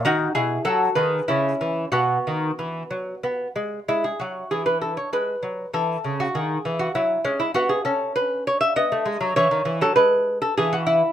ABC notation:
X:1
M:3/4
L:1/16
Q:1/4=98
K:E
V:1 name="Lute"
[DF]2 [EG]2 [FA]2 [GB]2 [CE]4 | [B,F]8- [B,F]2 z2 | E G F2 G B A c B4 | A3 F G3 F E2 C E |
F G A2 B2 c e d4 | c3 A B3 A G F E2 |]
V:2 name="Lute" clef=bass
D,2 B,,2 F,2 D,2 C,2 E,2 | B,,2 D,2 E,2 F,2 B,2 G,2 | G,2 F,2 E,4 G,2 F,2 | E,2 C,2 D,2 E,2 F,2 G,2 |
B,2 C6 B, A, G, F, | E, D, E, F, G,4 E,4 |]